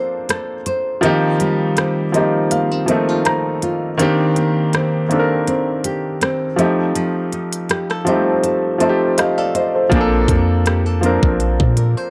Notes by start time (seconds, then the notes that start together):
Already playing: F3 A#3 C4 D4 A4 C5
0.29 A4, cross-stick, closed hi-hat
0.66 C5, closed hi-hat
1.01 D#3 F3 A#3 C4 D#4, closed hi-hat
1.05 G4
1.40 G3, closed hi-hat
1.77 C4, cross-stick, closed hi-hat
2.12 F3 A#3 C4 D#4 F4 D#5, closed hi-hat
2.17 G4
2.51 A#3 F5, closed hi-hat
2.71 C4
2.86 F3 A#3 C4 D#4, closed hi-hat
2.91 A3
3.09 F4
3.25 C4 A#5, cross-stick, closed hi-hat
3.62 F4, closed hi-hat
3.98 D#3 A#3 C4 D4, closed hi-hat
4.02 G4
4.36 A#3, closed hi-hat
4.73 C4, cross-stick, closed hi-hat
5.08 D#3 A#3 C4 D4 G4, closed hi-hat
5.13 A4
5.19 A#4
5.48 C4, closed hi-hat
5.84 G4, closed hi-hat
6.21 C4, cross-stick, closed hi-hat
6.56 F3 A3 C4 D#4, closed hi-hat
6.61 G4
6.95 F3, closed hi-hat
7.33 D#4, closed hi-hat
7.53 closed hi-hat
7.69 G4, cross-stick, closed hi-hat
7.90 A4, cross-stick
8.05 F3 G3 C4 D#4 C5, closed hi-hat
8.09 A3 G4
8.44 A4, closed hi-hat
8.78 F3 A3 C4 D#4 C5 A5, closed hi-hat
8.83 F4
8.89 G4
9.18 G4 C5 D#5 F5, cross-stick, closed hi-hat
9.38 A4 D5 F5
9.55 C5 D#5, closed hi-hat
9.75 A4 C5
9.90 A#1 F3 A#3 C4 D4, kick, closed hi-hat
9.94 G#4
10.01 A4
10.28 F2 D4, kick, closed hi-hat
10.66 G4, cross-stick, closed hi-hat
10.86 A4
11.01 F3 A#3 C4 D4 C5, closed hi-hat
11.06 A#4
11.23 A#1, kick
11.40 A4, closed hi-hat
11.60 A#2, kick
11.77 A#4, closed hi-hat
11.97 C5